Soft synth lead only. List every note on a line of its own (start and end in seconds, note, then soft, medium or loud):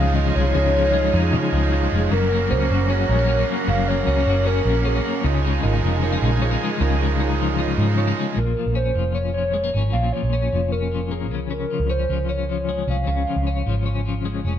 0.00 0.14 F5 loud
0.15 0.37 D#5 loud
0.35 1.72 C#5 loud
2.11 2.52 A#4 loud
2.50 2.92 C5 medium
2.90 3.08 C#5 medium
3.08 3.45 C#5 loud
3.68 3.90 F5 loud
3.88 4.48 C#5 loud
4.47 4.88 A#4 loud
4.87 5.15 G#4 medium
8.36 8.73 A#4 loud
8.76 9.16 C5 medium
9.14 9.33 C#5 medium
9.34 9.71 C#5 medium
9.92 10.14 F5 loud
10.12 10.73 C#5 loud
10.72 11.13 A#4 medium
11.11 11.41 G#4 medium
11.51 11.92 A#4 loud
11.90 12.32 C5 medium
12.31 12.49 C#5 medium
12.51 12.86 C#5 medium
12.90 14.02 F5 loud